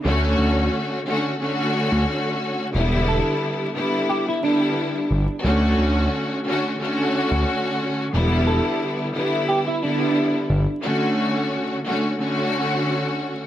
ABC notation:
X:1
M:4/4
L:1/16
Q:"Swing 16ths" 1/4=89
K:D
V:1 name="Clean electric guitar"
z16 | z2 A6 G E D6 | z16 | z2 A6 G E D6 |
z16 |]
V:2 name="String section"
[D,A,CF]6 [D,A,CF]2 [D,A,CF]8 | [D,G,B,E]6 [D,G,B,E]4 [D,G,B,E]4 z2 | [D,A,CF]6 [D,A,CF]2 [D,A,CF]8 | [D,G,B,E]6 [D,G,B,E]4 [D,G,B,E]4 z2 |
[D,A,CF]6 [D,A,CF]2 [D,A,CF]8 |]
V:3 name="Analog synth bass" clef=bass
D,,2 D,,2 z6 z D,, z4 | E,,,3 z8 z3 G,,, z | D,,2 D,,2 z6 z D,, z4 | E,,,3 z8 z3 G,,, z |
z16 |]